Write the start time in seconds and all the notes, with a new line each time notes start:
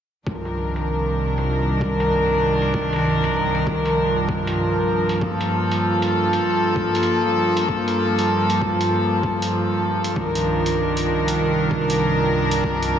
0.27 C2 G2 D#3 F3 D4 A#4, kick
0.45 closed hi-hat
0.76 closed hi-hat
1.38 closed hi-hat
1.81 kick
2.00 closed hi-hat
2.62 closed hi-hat
2.74 kick
2.93 closed hi-hat
2.96 closed hi-hat
2.99 closed hi-hat
3.02 closed hi-hat
3.05 closed hi-hat
3.10 closed hi-hat
3.14 closed hi-hat
3.19 closed hi-hat
3.24 closed hi-hat
3.55 closed hi-hat
3.67 kick
3.86 closed hi-hat
4.29 kick
4.47 closed hi-hat
5.09 closed hi-hat
5.21 A#3 A4, kick
5.41 closed hi-hat
5.72 closed hi-hat
6.02 closed hi-hat
6.33 closed hi-hat
6.76 kick
6.95 closed hi-hat
6.96 closed hi-hat
7.03 closed hi-hat
7.57 closed hi-hat
7.69 kick
7.88 closed hi-hat
8.19 closed hi-hat
8.50 closed hi-hat
8.62 kick
8.81 closed hi-hat
9.23 kick
9.42 closed hi-hat
10.04 closed hi-hat
10.16 C2 D#3 D4 A#4, kick
10.35 closed hi-hat
10.66 closed hi-hat
10.97 closed hi-hat
11.28 closed hi-hat
11.71 kick
11.90 closed hi-hat
12.51 closed hi-hat
12.64 kick
12.83 closed hi-hat